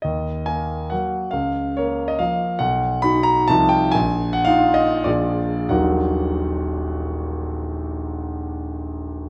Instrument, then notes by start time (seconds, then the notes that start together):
grand piano
0.02 D#2 D#5
0.46 A#3 A#4 G#5
0.90 F#3 A#3 A#4 F#5
1.31 C#2 F5
1.77 A#3 A#4 C#5
2.08 D#5
2.19 F3 A#3 A#4 F5
2.59 B1 F#5
3.02 D#4 F#4 B5
3.23 A#5
3.48 C2 F3 D#4 F4 A5
3.69 G5
3.92 A#1 G#5
4.33 F#5
4.45 D#4 F4 F5
4.74 D#5
5.04 A#1 F3 F4 G#4 D5
5.69 D#1 A#1 F#3 A#3 D#4 F#4 F#5